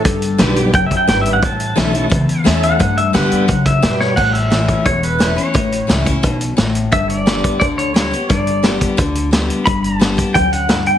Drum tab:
CC |--------|--------|--------|x-------|
HH |xxxxxxxx|xxxxxxxx|xxxxxxx-|-xxxxxxx|
SD |--o---o-|--o---o-|--o---oo|--o---o-|
BD |o---oo--|o---o---|o---oo--|o--oo---|

CC |--------|--------|--------|--------|
HH |xxxxxxxx|xxxxxxxx|xxxxxxxx|xxxxxxxx|
SD |--o---o-|--o---o-|--o---o-|--o---o-|
BD |o--oo---|o--oo---|o--oo---|o--oo---|